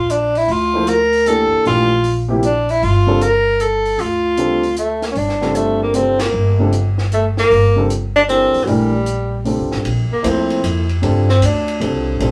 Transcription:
Already playing: upright bass A#1, tenor saxophone F4
0.10 tenor saxophone D4, closed hi-hat
0.35 tenor saxophone E4, open hi-hat
0.48 upright bass D2, tenor saxophone F4, open hi-hat
0.73 upright piano F3 A#3 E4 A4 C5
0.87 tenor saxophone A#4, closed hi-hat
1.13 open hi-hat
1.26 upright piano E3 A#3 D4 G4 A4, tenor saxophone A4, closed hi-hat
1.52 muted upright bass stroke
1.65 upright bass A#1, upright piano E3 A3 D4 G4 A#4, tenor saxophone F4, open hi-hat
2.04 open hi-hat
2.28 upright piano C3 F3 A#3 E4 G4
2.43 tenor saxophone D4, closed hi-hat
2.69 tenor saxophone E4, open hi-hat
2.82 upright bass G1, tenor saxophone F4, open hi-hat
3.07 upright piano D3 G3 C4 F4 A4
3.21 tenor saxophone A#4, closed hi-hat
3.60 tenor saxophone A4, closed hi-hat
3.85 open hi-hat
3.98 upright bass D2, tenor saxophone F4, open hi-hat
4.37 upright piano D3 G3 C4 F4 A4, closed hi-hat
4.63 open hi-hat
4.76 tenor saxophone A3, closed hi-hat
5.02 tenor saxophone A#3, snare, open hi-hat
5.12 upright bass G1, tenor saxophone C#4, open hi-hat
5.18 tenor saxophone D4
5.29 snare
5.42 upright piano D3 G3 C4 F4 A4, snare
5.55 tenor saxophone A3, closed hi-hat
5.82 tenor saxophone A#3
5.94 upright piano D3 G3 C4 F4 A4, tenor saxophone C4, closed hi-hat
6.19 tenor saxophone A#3, snare, ride
6.33 upright bass G1
6.59 upright piano D3 G3 C4 F4 A4
6.72 closed hi-hat
6.98 snare
7.12 tenor saxophone A3, closed hi-hat
7.37 tenor saxophone A#3, snare
7.50 upright bass G1, open hi-hat
7.76 upright piano D3 G3 C4 F4 A4
7.90 closed hi-hat
8.16 tenor saxophone D4
8.28 upright piano E3 D4 G4 A4 A#4, tenor saxophone C4, closed hi-hat
8.54 muted upright bass stroke, open hi-hat
8.64 upright bass A#1, upright piano E3 A3 D4, tenor saxophone F#3, open hi-hat
8.68 tenor saxophone G3, upright piano G4 A#4
9.06 closed hi-hat
9.45 upright piano D3 G3 C4 F4 A4, open hi-hat
9.58 upright bass C2
9.71 upright bass A1, snare
9.85 upright bass A#1, ride
10.11 tenor saxophone A#3, muted upright bass stroke
10.23 upright bass D2, upright piano F3 A#3 E4 A4 C5, hi-hat pedal, ride
10.28 tenor saxophone C4
10.50 ride
10.63 upright bass F2, hi-hat pedal, ride
10.89 ride
11.02 upright bass G2, upright piano D3 G3 C4 F4 A4, ride
11.29 tenor saxophone C4, snare
11.41 upright bass D2, hi-hat pedal, ride
11.45 tenor saxophone D4
11.68 ride
11.80 upright bass C2, upright piano D3 G3 C4 F4 A4, ride
12.19 upright bass A#1, upright piano D3 G3 C4 F4 A4, ride

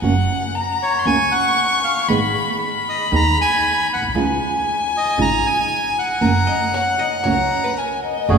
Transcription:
0.02 upright bass F#1, nylon-string guitar C#3 F#3 A#3 C#4 F#4, violin F#5
0.55 violin A#5
0.83 bandoneon C#5
0.99 violin C6
1.05 upright bass C#2, nylon-string guitar C#3 F#3 A#3 C#4 F#4, bandoneon G#5, violin C#6
1.31 bandoneon F#5
1.84 bandoneon F5
2.08 upright bass G#1, nylon-string guitar D#3 G#3 B3 D#4 G#4, violin B5
2.60 violin B5
2.89 bandoneon D#5
3.12 upright bass D#2, nylon-string guitar D#3 G#3 B3 D#4 G#4
3.16 bandoneon A#5
3.41 bandoneon G#5
3.93 upright bass A#1, bandoneon F#5
4.02 upright bass B1
4.08 upright bass C2
4.15 upright bass C#2, nylon-string guitar C#3 F3 G#3 D#4 F4, violin G#5
4.97 bandoneon D#5
5.17 upright bass G#1, nylon-string guitar C#3 F3 G#3 D#4 F4
5.21 bandoneon A#5
5.46 bandoneon G#5
5.99 bandoneon F#5
6.21 upright bass F#1, nylon-string guitar C#3 F#3 A#3 C#4 F#4, violin A#5
6.47 hollow-body jazz guitar D#5
6.74 hollow-body jazz guitar C#5, violin F#5
6.99 hollow-body jazz guitar D#5
7.24 upright bass C#2, nylon-string guitar C#3 F#3 A#3 C#4 F#4, hollow-body jazz guitar C#5, violin A#5
7.64 hollow-body jazz guitar B4
7.77 hollow-body jazz guitar A#4, violin G#5
8.03 violin D#5
8.29 upright bass F#1, nylon-string guitar C#3 F#3 A3 C#4 G#4, bandoneon A3 F#4 G#4, violin D5

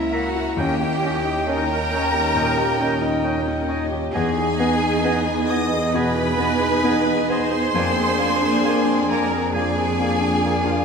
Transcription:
Already playing: double bass section C#2, grand piano C#2 A#3 E4 A#4, viola section C#4, french horn section C#4 E4, cello section E4, violin section E5, flute E5, trumpet section A#5
0.12 bassoon A#3, viola section E4, cello section F#4, grand piano A#4, clarinet E5, violin section F#5, flute F#5, oboe A#5
0.35 grand piano E4, viola section A#4
0.57 grand piano D#2, double bass section D#2, viola section A#3 C#4, french horn section C#4, bassoon C#4, cello section G4, clarinet D#5, violin section D#5 G5, oboe G5, trumpet section G5, flute G5
0.80 viola section C#4, grand piano G4
1.02 grand piano C#4, bassoon C#4, viola section D#4, clarinet D#5, oboe G5
1.25 grand piano D#4, viola section G4
1.46 grand piano C#4, bassoon C#4, french horn section D#4, viola section D#4, cello section A#4, clarinet D#5, oboe G5, violin section A#5, flute A#5
1.70 viola section C#4, grand piano D#4
1.92 viola section A#3, bassoon C#4, grand piano C#5, clarinet D#5, oboe G5
2.13 viola section C#4, grand piano G4
2.35 grand piano A#2, bassoon C#4, viola section D#4, clarinet D#5, oboe G5
2.57 grand piano G4, viola section G4
2.80 grand piano C#4, bassoon C#4, viola section D#4, clarinet D#5, oboe G5
3.01 viola section C#4, grand piano D#4
3.24 viola section A#3, grand piano C#4, bassoon C#4, clarinet D#5, oboe G5
3.46 viola section C#4, grand piano D#4
3.68 bassoon C#4, viola section D#4, grand piano C#5, clarinet D#5, oboe G5
3.91 viola section G4, grand piano G4
4.12 double bass section E2, grand piano E2, french horn section B3 D#4, viola section B3 G#4, bassoon B3, cello section G#4, violin section D#5 G#5, clarinet D#5, flute G#5, trumpet section G#5, oboe G#5
4.37 grand piano G#4
4.57 bassoon B3, grand piano B3, clarinet D#5, oboe G#5
4.83 grand piano D#4
5.04 bassoon B3, grand piano B3, clarinet D#5, oboe G#5
5.27 grand piano D#4
5.48 bassoon B3, grand piano B4, cello section D#5, clarinet D#5, oboe G#5, violin section D#6, flute D#6
5.74 grand piano G#4
5.93 grand piano B2, viola section B3 G#4, bassoon B3, french horn section B3 D#4, cello section B4, violin section D#5 B5, clarinet D#5, trumpet section G#5, oboe G#5, flute B5
6.16 grand piano G#4
6.38 grand piano B3, bassoon B3, clarinet D#5, oboe G#5
6.61 grand piano D#4
6.84 grand piano B3, bassoon B3, clarinet D#5, oboe G#5
7.06 grand piano D#4
7.28 bassoon B3, grand piano B4, cello section C5, clarinet D#5, oboe G#5, violin section C6, flute C6
7.50 grand piano G#4
7.74 double bass section F2, grand piano F2, viola section A#3 G#4, bassoon A#3, french horn section A#3 D4, violin section D5, clarinet D5, trumpet section G#5, oboe G#5
7.96 grand piano G#4
8.19 grand piano A#3, bassoon A#3, clarinet D5, oboe G#5
8.41 grand piano D4
8.64 bassoon A#3, grand piano A#3, oboe G#5
8.69 clarinet D5
8.85 grand piano D4
9.09 bassoon A#3, cello section A#4, grand piano A#4, clarinet D5, oboe G#5, violin section A#5, flute A#5
9.31 grand piano G#4
9.54 grand piano F3, viola section A#3 G#4, french horn section A#3 D4, bassoon A#3, cello section G#4, violin section D5 G#5, trumpet section G#5, flute G#5, oboe G#5
9.59 clarinet D5
9.78 grand piano G#4
9.99 grand piano A#3, bassoon A#3, oboe G#5
10.03 clarinet D5
10.21 grand piano D4
10.42 grand piano A#3, bassoon A#3, oboe G#5
10.47 clarinet D5
10.65 grand piano D4, cello section F4, violin section F5, flute F5

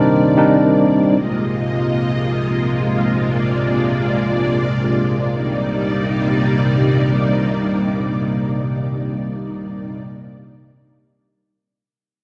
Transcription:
Already playing: string machine C3 D#3 G3 A#3 D5, tine electric piano G3 C4 D4 D#4 A#4 C5
0.37 tine electric piano G3 C4 D4 D#4 A#4
1.16 string machine C3 G#3 A#3 F4 D#5
3.24 string machine D5
5.33 string machine C3 G3 A#3 D#4 D5

